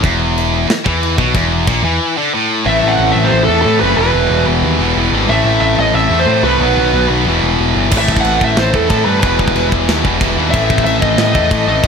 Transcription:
0.02 E1 E2, kick, china
0.38 china
0.68 muted distorted electric guitar stroke, muted picked electric bass stroke, snare, china
0.85 E2 E3, kick
1.03 china
1.17 B1 B2, kick
1.34 E1 E2, kick, china
1.67 A#1 A#2, kick, china
1.83 E2 E3
2.17 D3
2.34 A2
2.66 A1 A2 E3 A3 C4 E5
2.70 E4
2.83 A1
2.88 F#5
2.98 A1
3.12 A1 E5
3.25 C5
3.33 A1
3.44 E2 A3 A4
3.50 A2 E3 A3 C4 E4
3.62 A2 E3 A4
3.67 A3 C4 E4
3.80 F#1 A3 B4
3.85 A2 E3
3.96 E1 E2 B2 E3 G3 B3 B4
4.01 E3 E4
4.13 E1
4.30 E1
4.47 E1
4.62 D#2
4.79 E1 E2 B2 E3 G3 B3 E4
4.95 E1 E2 B2 E3 G3 B3
4.99 E4
5.12 G#1 B2 E3
5.16 E2
5.27 A1 A2 E3 A3 C4 E5
5.32 A3 E4
5.44 A1
5.61 A1 E5
5.78 A1 D#5
5.94 A1 E5
6.10 E2 A2 E3 A3 C4 E4
6.20 C5
6.26 A2 E3 A3 C4
6.30 E4
6.43 C2 E3 A3 B4
6.48 A2
6.59 B1 B2 D#3 F#3 B3 D#4
6.63 F#3 B3
6.77 B1
6.93 B1
7.10 B1
7.25 E1 E2 B2 E3 G3 B3 E4
7.30 E3
7.42 E1
7.59 E1
7.76 G1
7.89 A1 A2 E3 A3 C4, kick, crash, china
7.93 E3 A3 E4
7.98 E5
8.08 A1, kick
8.16 F#5, kick
8.24 A1, china
8.41 A1 E5, kick
8.57 A1 C5, snare, china
8.73 E2 A2 E3 A3 C4 E4 A4, kick
8.89 A2 E3 A3 C4 E4 A4, kick, china
9.05 G2 E3 A3 B4
9.10 A2
9.20 E1 E2 E3 G3 B3 B4, kick, china
9.25 B2 E3 E4
9.39 E1, kick
9.48 kick
9.56 E1, china
9.72 E1, kick
9.88 D#2, snare, china
10.02 E1 B2 E3 G3 B3 E4, kick
10.06 E2 E3
10.19 E1 E2 B2 E3 G3 B3, kick, china
10.23 E4
10.36 D#2 E2 B2 E3
10.51 A1 A2 E3 A3 C4 E4 E5, kick, china
10.56 A3
10.70 A1, kick
10.78 kick
10.84 A1 E5, china
11.01 A1 D#5, kick
11.18 A1, snare, china
11.34 E2 A2 E3 A3 C4 E4, kick
11.48 A2 E3 A3 C4, kick, china
11.52 E4
11.67 A1 E3 A3 D#5
11.71 A2
11.83 B1 B2 F#3, kick, china

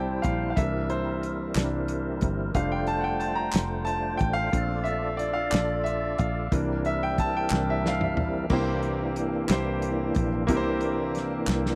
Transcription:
Already playing: C2 G3 C4 E4 C5 G5 A5 A#5
0.22 A#1 F5, kick, closed hi-hat
0.50 F5
0.56 C2 E3 G3 A#3 C4 D4 E4 A4 E5, kick, closed hi-hat
0.63 A#4
0.90 C5, closed hi-hat
1.23 closed hi-hat
1.55 C2 E3 A#3 D4, snare, clap, closed hi-hat
1.88 closed hi-hat
2.21 G1, kick, closed hi-hat
2.55 F1 G3 A3 D4 F4 C5 F5, kick, closed hi-hat
2.72 G5
2.87 A5, closed hi-hat
3.01 F#5 G5
3.20 A5, closed hi-hat
3.35 A#5
3.52 F1, snare, clap, closed hi-hat
3.85 A5, closed hi-hat
4.17 A1 G5, kick, closed hi-hat
4.33 F5
4.52 A#1 A3 C4 D4 F4 A4 D5, kick, closed hi-hat
4.84 E5, closed hi-hat
5.17 D5, closed hi-hat
5.33 F5
5.51 A#1 D5, clap, closed hi-hat
5.55 snare
5.84 E5, closed hi-hat
6.18 A#1 F5, kick, closed hi-hat
6.51 C2 E3 G3 A#3 C4 D4 E4 A#4, kick, closed hi-hat
6.85 E5, closed hi-hat
7.03 G5
7.18 A5, kick, closed hi-hat
7.37 G5
7.50 C2 E3 A#3 D4, snare, clap
7.70 E5
7.86 F5, snare
8.01 E5, mid tom
8.16 A#1, floor tom
8.49 C2 C3 E3 A#3 D4 E4 G4 C5, kick, crash
8.83 closed hi-hat
9.16 closed hi-hat
9.48 C2 A#3 E4 G4 C5, snare, clap, closed hi-hat
9.82 closed hi-hat
10.15 A#1, kick, closed hi-hat
10.47 C2 C3 E3 A#3 D4 E4 G4 A#4, kick, closed hi-hat
10.57 C5
10.81 closed hi-hat
11.15 snare, closed hi-hat
11.47 C2, snare, clap
11.66 snare

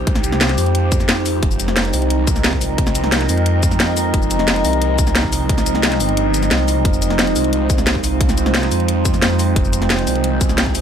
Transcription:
Already playing: C2 F3 G#3 C4 D#4 G4 C5
0.07 kick, closed hi-hat
0.15 snare, shaker
0.24 closed hi-hat, shaker
0.32 snare
0.41 snare, closed hi-hat
0.49 snare, closed hi-hat
0.58 F2, open hi-hat, shaker
0.66 closed hi-hat
0.75 closed hi-hat
0.92 kick, closed hi-hat, shaker
1.00 snare, shaker
1.09 snare, closed hi-hat
1.26 open hi-hat, shaker
1.43 F1 A#4, kick, closed hi-hat
1.51 D#5, shaker
1.60 closed hi-hat, shaker
1.68 snare
1.77 snare, closed hi-hat
1.85 closed hi-hat
1.93 C2, open hi-hat, shaker
2.02 closed hi-hat
2.10 closed hi-hat
2.27 kick, closed hi-hat, shaker
2.36 snare, shaker
2.44 snare, closed hi-hat
2.53 kick
2.61 open hi-hat, shaker
2.78 kick, closed hi-hat
2.87 snare, shaker
2.95 closed hi-hat, shaker
3.04 snare
3.12 snare, closed hi-hat
3.21 snare, closed hi-hat
3.29 F2, open hi-hat, shaker
3.38 closed hi-hat
3.46 closed hi-hat
3.63 kick, closed hi-hat, shaker
3.71 snare, shaker
3.80 snare, closed hi-hat
3.97 open hi-hat, shaker
4.14 F1, kick, closed hi-hat
4.22 shaker
4.31 closed hi-hat, shaker
4.39 snare
4.48 snare, closed hi-hat
4.56 closed hi-hat
4.65 C2, open hi-hat, shaker
4.73 closed hi-hat
4.82 closed hi-hat
4.99 kick, closed hi-hat, shaker
5.07 snare, shaker
5.15 snare, closed hi-hat
5.24 kick
5.32 open hi-hat, shaker
5.49 kick, closed hi-hat
5.58 snare, shaker
5.66 closed hi-hat, shaker
5.75 snare
5.83 snare, closed hi-hat
5.92 snare, closed hi-hat
6.00 G1, open hi-hat, shaker
6.09 closed hi-hat
6.17 closed hi-hat
6.34 closed hi-hat, shaker
6.43 snare, closed hi-hat, shaker
6.51 C2, snare, closed hi-hat
6.68 open hi-hat, shaker
6.85 F1 F4, kick, closed hi-hat
6.93 C5, shaker
7.02 closed hi-hat, shaker
7.10 snare
7.19 snare, closed hi-hat
7.27 closed hi-hat
7.36 C2, open hi-hat, shaker
7.44 closed hi-hat
7.53 closed hi-hat
7.70 kick, closed hi-hat, shaker
7.78 snare, shaker
7.87 snare, closed hi-hat
7.95 kick
8.04 open hi-hat, shaker
8.21 kick, closed hi-hat
8.29 snare, shaker
8.38 closed hi-hat, shaker
8.46 snare
8.54 snare, closed hi-hat
8.63 snare, closed hi-hat
8.71 F2, open hi-hat, shaker
8.80 closed hi-hat
8.88 closed hi-hat
9.05 kick, closed hi-hat, shaker
9.14 snare, shaker
9.22 snare, closed hi-hat
9.39 open hi-hat, shaker
9.56 F1 G#4, kick, closed hi-hat
9.65 shaker
9.73 closed hi-hat, shaker
9.82 snare
9.90 snare, closed hi-hat
9.99 closed hi-hat
10.07 C2, open hi-hat, shaker
10.15 closed hi-hat
10.24 closed hi-hat
10.41 kick, closed hi-hat, shaker
10.49 snare, shaker
10.58 snare, closed hi-hat
10.66 kick
10.75 open hi-hat, shaker

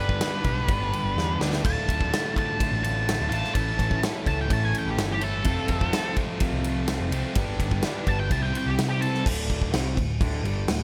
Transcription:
Already playing: G1 G2 D3 G3 B3 D4 G4
0.00 B4
0.09 kick
0.19 G3 B3 D4 G4, snare, ride
0.44 B1, kick, ride
0.67 G1 G2 D3 G3 B3 D4 G4, kick, ride
0.92 G3 B3 D4 G4, ride
1.04 G1
1.15 E2 G3 B3 D4 G4, snare
1.38 D2 G2 D3 G3 B3 D4 G4, snare
1.53 snare
1.62 D1 D2 A2 D3 A3 F4 A5, kick, ride, splash
1.88 D1 D3 A3 F4, kick, ride
2.01 kick
2.10 A2 D3 A3 F4, snare, ride
2.36 A5, kick, ride
2.59 D2 A2 D3 A3 F4, kick, ride
2.72 A1
2.83 D3 A3 F4 A5, ride
3.07 A2 D3 A3 F4, snare, ride
3.20 D1
3.30 A1 D2 A2 A3 F4 A5, ride
3.34 D3
3.44 snare
3.54 A1 A2 E3 A3 C#4 E4 A4 A5, kick, ride
3.78 A1 A3 C#4 E4 A4, kick, ride
3.91 kick
4.02 A3 C#4 E4 A4, snare, ride
4.26 C#2 A5, kick, ride
4.41 G5
4.48 A1 A2 E3 A3 C#4 E4 A4, kick, ride
4.52 A5
4.65 G#5
4.73 A3 C#4 E4 A4, ride
4.78 G5
4.86 A1
4.90 G4
4.97 G1 A3 C#4 E4 A4, snare, ride
5.12 G4
5.20 A2 E3 A3 C#4 E4 A4, ride
5.43 F1 F2 C3 F3 A3 C4 F4, kick, ride
5.67 F1 F3 A3 C4 F4, kick, ride
5.81 kick
5.91 F3 A3 C4 F4, snare, ride
6.16 kick, ride
6.40 F2 C3 F3 A3 C4 F4, kick, ride
6.53 C2
6.63 F3 A3 C4 F4, ride
6.87 F3 A3 C4 F4, snare, ride
7.00 F1
7.11 C2 F2 C3 F3 A3 C4 F4, ride
7.34 G1 G2 D3 G3 B3 D4 G4, kick, ride
7.60 G1 G3 B3 D4 G4, kick, ride
7.71 kick
7.82 G3 B3 D4 G4, snare, ride
8.07 G1 A5, kick, ride
8.20 G5
8.30 C2 C3 G3 C4 E4 G4 C5 A5, kick, ride
8.43 G5
8.53 C4 E4 G4 C5, ride
8.57 G5
8.66 C2 G4
8.76 C3 C4 E4 G4 C5, snare, ride
8.89 G4
8.99 C4 E4 G4 A4 C5, ride
9.15 snare
9.24 D1 D2 A2 D3, kick, crash
9.50 kick, crash
9.62 kick
9.72 C2 C3 G3 C4, snare, crash
9.96 D1 D2 A2, kick, crash
10.20 D1 D2 A2 D3, kick, crash
10.43 G1 G2 D3 G3, crash
10.68 D1 D2 A2, snare, crash

